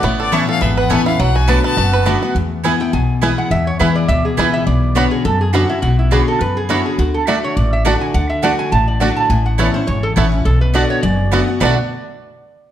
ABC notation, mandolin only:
X:1
M:4/4
L:1/8
Q:"Swing" 1/4=207
K:Bdor
V:1 name="Mandolin"
z2 [B,Eca] z3 [B,Eca] z | z2 [B,Fda] z3 [B,Fda] z | z2 [B,EBg] z3 [B,EBg] z | z2 [B,EBg] z3 [B,EBg] z |
z2 [DFcb] z3 [DFcb] z | z2 [DFcb] z3 [DFcb] z | z2 [A,Fda] z3 [A,Fda] z | z2 [A,Fda] z3 [A,Fda] z |
z2 [B,Eca] z3 [B,Eca] z | z2 [B,Fda] z3 [B,Fda] z | [B,Fda] z6 z |]